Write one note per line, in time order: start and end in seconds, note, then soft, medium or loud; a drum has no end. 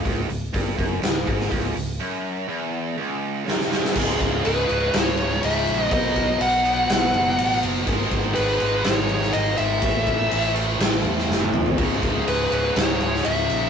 0.05 0.28 C#1 medium
0.05 0.28 C#2 loud
0.05 kick medium
0.05 open hi-hat medium
0.29 0.52 C#1 medium
0.29 0.48 C#2 medium
0.29 open hi-hat soft
0.54 0.77 G1 medium
0.54 0.77 G2 medium
0.54 kick medium
0.54 open hi-hat medium
0.78 1.01 F#1 medium
0.78 1.01 F#2 loud
0.78 kick medium
0.78 open hi-hat soft
1.02 1.25 C#1 medium
1.02 1.22 C#2 medium
1.02 snare loud
1.02 open hi-hat medium
1.26 1.50 G#1 medium
1.26 1.50 G#2 medium
1.26 kick medium
1.26 open hi-hat soft
1.40 snare soft
1.51 1.74 C#1 medium
1.51 1.74 C#2 medium
1.51 kick medium
1.51 open hi-hat medium
1.75 1.98 C#1 medium
1.75 1.95 C#2 medium
1.75 open hi-hat medium
2.00 2.48 F#2 medium
2.48 2.97 E2 medium
2.98 3.45 C#2 medium
3.45 3.69 F#2 medium
3.45 snare medium
3.60 snare medium
3.69 3.93 E2 medium
3.69 snare medium
3.84 snare medium
3.93 4.19 C#1 medium
3.93 4.66 C#2 medium
3.93 4.67 G#2 loud
3.93 4.66 C#3 loud
3.93 5.90 G#3 loud
3.93 5.90 E4 loud
3.93 kick loud
3.93 crash loud
3.93 crash medium
4.20 4.44 C#1 medium
4.20 kick medium
4.20 crash medium
4.45 4.68 C#1 medium
4.45 4.94 B4 medium
4.45 crash medium
4.68 4.93 C#1 medium
4.68 5.89 C#2 medium
4.68 5.90 G#2 medium
4.68 5.89 C#3 medium
4.68 crash medium
4.94 5.40 C#1 medium
4.94 5.40 C#5 medium
4.94 snare loud
4.94 crash medium
5.17 crash medium
5.43 5.66 C#1 medium
5.43 5.82 E5 medium
5.43 crash medium
5.67 5.90 A#1 medium
5.67 crash medium
5.82 5.93 D#5 medium
5.89 6.38 B1 medium
5.89 6.62 B2 medium
5.89 6.63 F#3 loud
5.89 6.63 B3 loud
5.89 7.86 D#4 loud
5.89 7.86 F#4 loud
5.89 7.86 B4 loud
5.89 kick loud
5.89 crash medium
5.93 6.42 D#5 loud
6.16 kick medium
6.16 crash medium
6.40 6.87 B1 medium
6.40 7.59 F#5 medium
6.40 crash medium
6.63 7.85 B2 medium
6.63 7.86 F#3 medium
6.63 7.85 B3 medium
6.63 crash medium
6.89 7.12 B1 medium
6.89 snare loud
6.89 crash medium
7.13 7.37 F#1 medium
7.13 crash medium
7.37 7.61 A1 medium
7.37 crash medium
7.62 7.86 F#1 medium
7.62 crash medium
7.85 8.10 G#1 medium
7.85 8.58 G#2 loud
7.85 8.59 D#3 medium
7.85 9.81 B3 loud
7.85 9.81 D#4 loud
7.85 9.81 G#4 loud
7.85 kick loud
7.85 crash medium
7.89 8.58 G#3 loud
8.11 8.35 G#1 medium
8.11 kick medium
8.11 crash medium
8.35 8.60 G#1 medium
8.35 8.81 B4 medium
8.35 crash medium
8.59 8.84 G#1 medium
8.59 9.81 G#2 medium
8.59 9.81 D#3 medium
8.59 9.80 G#3 medium
8.59 crash medium
8.84 9.32 G#1 medium
8.84 9.35 C#5 loud
8.84 snare loud
8.84 crash medium
9.09 crash medium
9.22 snare soft
9.33 9.58 G#1 medium
9.33 9.56 D#5 loud
9.33 crash medium
9.58 9.82 G#1 medium
9.58 10.52 E5 loud
9.58 crash medium
9.81 10.29 A1 medium
9.81 10.54 A2 medium
9.81 10.56 E3 loud
9.81 10.53 A3 medium
9.81 11.77 C#4 loud
9.81 11.77 E4 loud
9.81 11.77 A4 loud
9.81 kick loud
9.81 crash medium
10.07 kick medium
10.07 crash medium
10.31 10.78 A1 medium
10.31 crash medium
10.54 11.75 A2 medium
10.54 11.77 E3 medium
10.54 11.76 A3 medium
10.54 crash medium
10.79 11.03 A1 medium
10.79 snare loud
10.79 crash medium
11.04 11.28 E2 medium
11.04 crash medium
11.18 snare soft
11.28 11.52 F#1 medium
11.28 snare medium
11.41 high tom medium
11.53 11.77 E2 medium
11.53 mid tom loud
11.66 floor tom medium
11.75 12.02 C#1 medium
11.75 12.49 C#2 medium
11.75 12.50 G#2 medium
11.75 12.48 C#3 medium
11.75 13.70 G#3 loud
11.75 13.70 E4 loud
11.75 kick loud
11.75 crash medium
12.03 12.26 C#1 medium
12.03 kick medium
12.03 crash medium
12.26 12.50 C#1 medium
12.26 12.76 B4 medium
12.26 crash medium
12.49 12.74 C#1 medium
12.49 13.70 G#2 medium
12.49 13.70 C#3 medium
12.49 crash medium
12.54 13.70 C#2 medium
12.76 13.23 C#1 medium
12.76 13.27 C#5 medium
12.76 snare loud
12.76 crash medium
13.00 crash medium
13.14 snare soft
13.24 13.49 C#1 loud
13.24 13.70 E5 medium
13.24 crash medium
13.49 13.70 A#1 loud
13.49 crash medium